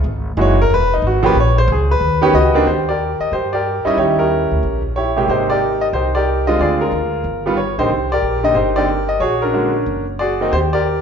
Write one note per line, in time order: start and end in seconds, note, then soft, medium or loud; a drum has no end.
0.04 0.36 G#1 medium
0.37 0.69 F#1 loud
0.37 0.56 E3 medium
0.37 0.56 G#3 medium
0.37 0.57 D#4 medium
0.37 0.57 F#4 medium
0.41 0.60 C#5 medium
0.62 0.71 A#4 loud
0.70 1.01 E1 medium
0.74 0.92 B4 loud
0.94 1.04 D#4 medium
1.02 1.34 G#1 medium
1.07 1.25 F#4 medium
1.23 1.34 F3 medium
1.23 1.34 A#3 medium
1.23 1.34 C#4 medium
1.23 1.34 G4 medium
1.23 1.36 B4 medium
1.35 1.67 A#1 medium
1.40 1.58 C#5 medium
1.58 1.69 C5 loud
1.68 2.00 C#2 loud
1.72 1.91 G#4 medium
1.91 2.57 B4 medium
2.00 2.32 D#2 medium
2.21 2.32 D#3 medium
2.21 2.32 B3 medium
2.21 2.32 C#4 medium
2.21 2.33 G4 loud
2.33 2.65 C#2 medium
2.33 2.65 F#4 medium
2.33 2.65 G4 medium
2.33 2.68 D#5 medium
2.54 2.65 D#3 medium
2.54 2.65 A#3 medium
2.54 2.65 C4 medium
2.54 2.65 D4 medium
2.66 3.16 D#2 medium
2.66 2.89 G4 medium
2.66 2.88 C5 medium
2.89 3.33 G4 medium
2.89 3.50 A#4 medium
2.89 3.22 D5 medium
3.20 3.32 D#5 medium
3.20 muted upright bass stroke soft
3.31 3.81 G2 medium
3.31 3.53 G4 medium
3.31 3.54 C5 medium
3.53 3.95 G4 medium
3.53 3.95 A#4 medium
3.53 3.83 D5 medium
3.85 4.27 G3 medium
3.85 4.19 C#4 medium
3.85 4.27 D#4 medium
3.85 3.98 E4 medium
3.85 3.97 D#5 medium
3.85 muted upright bass stroke soft
3.97 4.47 D#2 medium
3.97 4.60 E4 medium
3.97 4.19 G4 medium
3.97 4.03 C#5 medium
4.19 4.81 C#4 medium
4.19 4.81 G4 soft
4.19 4.80 A#4 medium
4.51 4.62 D2 medium
4.63 5.25 A#1 medium
4.96 5.27 E4 medium
4.96 5.16 G4 medium
4.96 5.29 C#5 medium
5.16 5.59 C3 medium
5.16 5.59 G#3 medium
5.16 5.59 A#3 medium
5.16 5.29 G4 medium
5.28 5.90 G#1 medium
5.28 5.91 D#4 medium
5.28 5.50 G4 medium
5.28 5.48 C5 medium
5.50 5.94 G4 medium
5.50 6.12 A#4 medium
5.50 5.80 D5 medium
5.81 5.86 D#5 medium
5.93 6.55 C2 medium
5.93 6.56 D#4 medium
5.93 6.15 G4 medium
5.93 6.13 C5 medium
6.15 6.57 G4 medium
6.15 6.57 A#4 medium
6.15 6.45 D5 medium
6.47 6.89 D3 medium
6.47 6.90 G#3 medium
6.47 6.90 C4 medium
6.47 6.61 F4 medium
6.47 6.58 D#5 medium
6.59 6.90 D2 medium
6.59 6.81 F4 medium
6.59 7.22 G#4 medium
6.59 6.80 D5 medium
6.81 7.43 F4 medium
6.81 7.42 A#4 medium
6.92 7.22 D2 medium
7.24 7.74 G1 medium
7.46 7.56 D#3 medium
7.46 7.56 G3 medium
7.46 7.57 B3 medium
7.46 7.57 F4 medium
7.57 7.77 C#5 medium
7.78 7.89 A#1 medium
7.78 7.89 D3 medium
7.78 7.89 A#3 medium
7.78 7.89 C4 medium
7.78 7.89 D#4 medium
7.78 8.12 G4 medium
7.78 8.09 C5 medium
7.89 8.20 C2 medium
8.12 8.55 G4 medium
8.12 8.74 A#4 medium
8.12 8.45 D5 medium
8.22 8.53 A#1 medium
8.43 8.54 D3 medium
8.43 8.54 A#3 medium
8.43 8.55 C4 medium
8.43 8.55 D#4 medium
8.43 8.55 D#5 medium
8.54 9.17 G1 medium
8.54 8.76 D#4 medium
8.54 8.76 G4 medium
8.54 8.77 C5 medium
8.76 8.87 D3 medium
8.76 8.87 A#3 medium
8.76 8.88 C4 medium
8.76 8.88 D#4 medium
8.76 9.19 G4 medium
8.76 9.19 A#4 medium
8.76 9.10 D5 medium
9.09 9.21 D#5 medium
9.20 9.83 A#1 medium
9.20 9.53 F#4 medium
9.20 9.83 G#4 medium
9.20 9.40 C#5 medium
9.42 10.04 C#4 medium
9.42 10.04 D4 medium
9.42 10.03 A#4 medium
9.53 9.72 D3 medium
9.53 9.72 G#3 medium
9.53 9.73 A#3 medium
9.53 9.73 F#4 medium
9.86 10.48 F#1 medium
10.19 10.51 F#4 medium
10.19 10.50 G#4 medium
10.19 10.50 D5 medium
10.40 10.51 D#3 medium
10.40 10.51 A#3 medium
10.40 10.51 C4 medium
10.40 10.52 D#4 medium
10.52 11.02 D#2 medium
10.52 10.73 G4 medium
10.52 10.58 C5 medium
10.73 11.02 G4 medium
10.73 11.02 A#4 medium
10.73 11.02 D5 medium